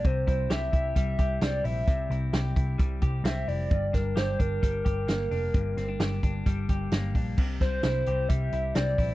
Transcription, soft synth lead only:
X:1
M:4/4
L:1/8
Q:1/4=131
K:Cmix
V:1 name="Soft synth lead"
c c e2 e2 d e- | e2 z4 e d- | d B c B4- B- | B6 z2 |
z c3 e2 d2 |]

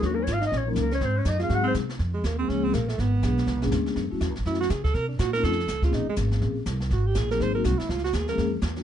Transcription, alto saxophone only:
X:1
M:4/4
L:1/8
Q:"Swing" 1/4=244
K:Db
V:1 name="Alto saxophone"
(3G, B, D F E D F, B, D | C D E F G C z2 | z A, B, C D C B, =A, | _C6 z2 |
z4 _F G A =A | B =D G B =A3 F | E A, z6 | G =G A B c B _G _F |
F G A B2 z3 |]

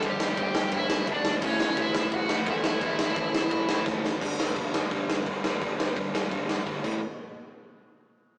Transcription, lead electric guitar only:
X:1
M:4/4
L:1/16
Q:1/4=172
K:Glyd
V:1 name="Lead electric guitar"
[Gg]4 [Gg]4 [Ee]4 [Dd]3 z | [Cc]4 [Ee]4 [Ff]4 [Ee]2 [Ee]2- | [Ee]12 z4 | z16 |
z16 | z16 |]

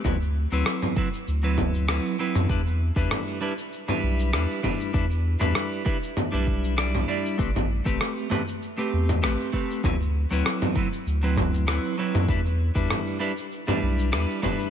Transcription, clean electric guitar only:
X:1
M:4/4
L:1/16
Q:"Swing 16ths" 1/4=98
K:Em
V:1 name="Clean electric guitar"
[F,CEB] z2 [F,CEB]3 [F,CEB] z2 [F,CEB]3 [F,CEB]2 [F,CEB]2 | [G,DEB] z2 [G,DEB]3 [G,DEB] z2 [G,DEB]3 [G,DEB]2 [G,DEB]2 | [G,DEB] z2 [G,DEB]3 [G,DEB] z2 [G,DEB]3 [G,DEd]2 [G,DEd]2 | [A,CGB] z2 [A,CGB]3 [A,CGB] z2 [A,CGB]3 [A,CGB]2 [A,CGB]2 |
[F,CEB] z2 [F,CEB]3 [F,CEB] z2 [F,CEB]3 [F,CEB]2 [F,CEB]2 | [G,DEB] z2 [G,DEB]3 [G,DEB] z2 [G,DEB]3 [G,DEB]2 [G,DEB]2 |]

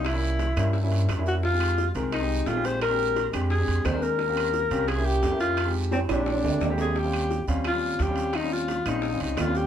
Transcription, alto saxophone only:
X:1
M:4/4
L:1/8
Q:1/4=174
K:Ebmix
V:1 name="Alto saxophone"
=E4 z3 _G | F3 z E2 F c | B3 z A2 c B- | B4 A G2 F- |
F z C =D4 A | G3 z F2 G2 | E F2 E2 E F G |]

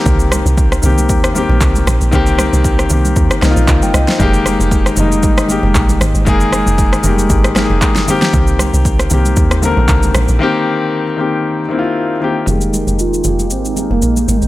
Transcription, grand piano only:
X:1
M:4/4
L:1/16
Q:"Swing 16ths" 1/4=116
K:Fm
V:1 name="Grand piano"
z16 | z12 z g e c- | c z12 z3 | z16 |
z16 | z16 | z16 |]
V:2 name="Grand piano"
[E,B,CG]4 z2 [E,B,CG]4 [E,B,CG]4 z2 | [E,B,CG]4 z2 [E,B,CG]4 [E,B,CEF]4 z2 | [E,A,B,G]4 z2 [E,G,A,B,E]4 [E,A,B,G]4 z2 | [E,A,B,A]4 z2 [E,G,A,B,G]4 [E,A,B,GA]4 [E,B,CG]2- |
[E,B,CG]4 z2 [E,B,CG]4 [=D,E,B,CB]4 z2 | [E,B,CG]4 z2 [E,B,CG]4 [E,B,C=EF]4 [_E,B,CG]2 | [E,G,A,B,G]4 z2 [E,A,B,G]4 [E,A,B,B]6 |]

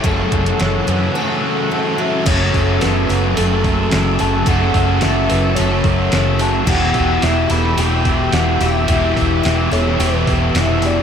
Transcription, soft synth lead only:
X:1
M:4/4
L:1/8
Q:1/4=109
K:F#phr
V:1 name="Soft synth lead"
A2 c2 A3 e | c2 B2 A3 a | f2 e2 c3 a | f2 e b g2 f e- |
e3 c B2 z d |]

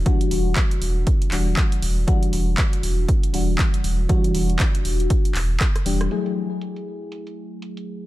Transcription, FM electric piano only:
X:1
M:4/4
L:1/8
Q:"Swing 16ths" 1/4=119
K:Edor
V:1 name="FM electric piano"
[E,G,DF]4- [E,G,DF] [E,G,DF]3 | [E,G,DF]4- [E,G,DF] [E,G,DF]3 | [E,G,DF]4- [E,G,DF] z2 [E,G,DG] | [F,A,E^G]8 |]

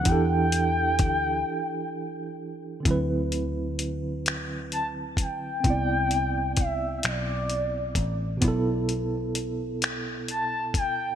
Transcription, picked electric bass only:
X:1
M:6/8
L:1/8
Q:3/8=43
K:Dmix
V:1 name="Picked electric bass" clef=bass
E,,2 D,, z3 | D,,4- D,, B,,, | C,,3 B,,,2 A,,, | B,,,4- B,,, D,, |]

